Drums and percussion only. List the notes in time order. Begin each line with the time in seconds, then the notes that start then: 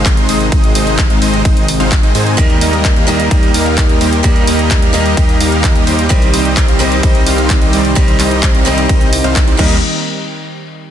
0.06 kick, clap, closed hi-hat, ride
0.17 closed hi-hat
0.29 open hi-hat
0.40 closed hi-hat
0.52 kick, closed hi-hat, ride
0.64 closed hi-hat
0.75 open hi-hat
0.87 closed hi-hat
0.98 kick, clap, closed hi-hat, ride
1.10 closed hi-hat
1.22 open hi-hat
1.33 closed hi-hat
1.45 kick, closed hi-hat, ride
1.57 closed hi-hat
1.68 open hi-hat
1.80 closed hi-hat
1.92 kick, clap, closed hi-hat, ride
2.03 closed hi-hat
2.15 open hi-hat
2.27 closed hi-hat
2.38 kick, closed hi-hat, ride
2.50 closed hi-hat
2.61 open hi-hat
2.73 closed hi-hat
2.85 kick, clap, closed hi-hat, ride
2.96 closed hi-hat
3.08 open hi-hat
3.20 closed hi-hat
3.31 kick, closed hi-hat, ride
3.43 closed hi-hat
3.54 open hi-hat
3.66 closed hi-hat
3.78 kick, clap, closed hi-hat, ride
3.89 closed hi-hat
4.01 open hi-hat
4.13 closed hi-hat
4.24 kick, closed hi-hat, ride
4.36 closed hi-hat
4.47 open hi-hat
4.59 closed hi-hat
4.71 kick, clap, closed hi-hat, ride
4.82 closed hi-hat
4.94 open hi-hat
5.06 closed hi-hat
5.17 kick, closed hi-hat, ride
5.29 closed hi-hat
5.41 open hi-hat
5.52 closed hi-hat
5.64 kick, clap, closed hi-hat, ride
5.76 closed hi-hat
5.87 open hi-hat
5.99 closed hi-hat
6.10 kick, closed hi-hat, ride
6.22 closed hi-hat
6.34 open hi-hat
6.45 closed hi-hat
6.57 kick, clap, closed hi-hat, ride
6.68 closed hi-hat
6.80 open hi-hat
6.92 closed hi-hat
7.03 kick, closed hi-hat, ride
7.15 closed hi-hat
7.27 open hi-hat
7.38 closed hi-hat
7.50 kick, clap, closed hi-hat, ride
7.62 closed hi-hat
7.73 open hi-hat
7.85 closed hi-hat
7.96 kick, closed hi-hat, ride
8.08 closed hi-hat
8.20 clap, open hi-hat
8.31 closed hi-hat
8.43 kick, clap, closed hi-hat, ride
8.55 closed hi-hat
8.66 open hi-hat
8.78 closed hi-hat
8.89 kick, closed hi-hat, ride
9.01 closed hi-hat
9.13 open hi-hat
9.24 closed hi-hat
9.36 kick, clap, closed hi-hat, ride
9.48 closed hi-hat
9.59 kick, crash